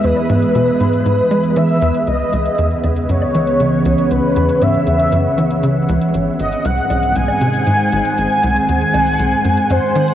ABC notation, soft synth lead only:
X:1
M:4/4
L:1/8
Q:1/4=118
K:C#m
V:1 name="Soft synth lead"
B6 e2 | d3 z c4 | B2 e4 z2 | z d f2 g4 |
g g4- g ^B2 |]